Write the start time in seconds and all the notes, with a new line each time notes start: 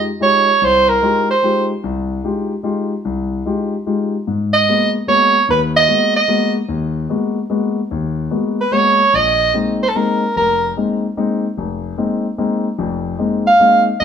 0.20 G#3 D#4 F4 G4 C#5
0.61 C2 C5
0.89 A#4
1.02 G#3 D#4 F4 G4
1.30 C5
1.43 G#3 D#4 F4 G4
1.84 C2
2.24 G#3 D#4 F4 G4
2.63 G#3 D#4 F4 G4
3.05 C2
3.46 G#3 D#4 F4 G4
3.86 G#3 D#4 F4 G4
4.27 G#2
4.53 D#5
4.68 G#3 A#3 B3 F#4
5.07 G#3 A#3 B3 F#4 C#5
5.48 D#2 B4
5.76 D#5
5.88 G#3 A#3 B3 F#4
6.16 D#5
6.28 G#3 A#3 B3 F#4
6.69 D#2
7.09 G#3 A#3 B3 F#4
7.50 G#3 A#3 B3 F#4
7.91 D#2
8.30 G#3 A#3 B3 F#4
8.61 B4
8.72 G#3 A#3 B3 F#4 C#5
9.13 A#1 D#5
9.54 G#3 A#3 C4 D#4
9.83 C5
9.88 A4
9.95 G#3 A#3 C4 D#4 A#4
10.36 F1 A#4
10.77 G#3 A#3 C4 D#4
11.17 G#3 A#3 C4 D#4
11.58 F1
11.98 G#3 A#3 C4 D#4
12.38 G#3 A#3 C4 D#4
12.78 F1 F2
13.19 G#3 A#3 C4 D#4
13.47 F5
13.60 G#3 A#3 C4 D#4
14.00 F1 F2 D#5